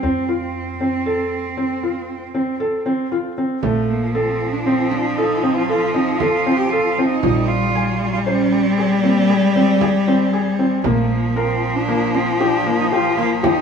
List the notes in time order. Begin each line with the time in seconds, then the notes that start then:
Already playing: C4
0.03 F2 C4
0.28 F4
0.81 C4
1.06 A4
1.57 C4
1.83 F4
2.34 C4
2.60 A4
2.86 C4
3.12 F4
3.38 C4
3.61 A#1 F3 A3, frame drum
3.90 A#3
4.15 C4 A4
4.53 D4
4.66 C4
4.91 D4, frame drum
5.17 D#4 A4
5.43 C4
5.55 F4
5.68 F4 A4
5.94 C4 D#4
6.18 F4 A4, frame drum
6.46 C4
6.57 G4
6.70 F4 A4
6.97 C4, frame drum
7.09 D#4
7.23 A#1 F3 G3, frame drum
7.47 F4
7.75 G#5
8.13 F4
8.26 C#4 C5
8.53 frame drum
8.63 C4
8.78 G#4
9.02 A#3 C4, frame drum
9.29 G#3 G#4
9.56 C4
9.81 G#4, frame drum
10.08 C4
10.33 G#4
10.59 C4, frame drum
10.83 A#1 F3 A3 A#3, frame drum
11.12 A#3
11.35 C4 A#4
11.75 D4
11.88 A#3
12.15 C4, frame drum
12.40 D4 G4
12.66 A#3, frame drum
12.80 D#4
12.91 F4 G4
13.17 A#3 F4
13.43 D#4 G4, frame drum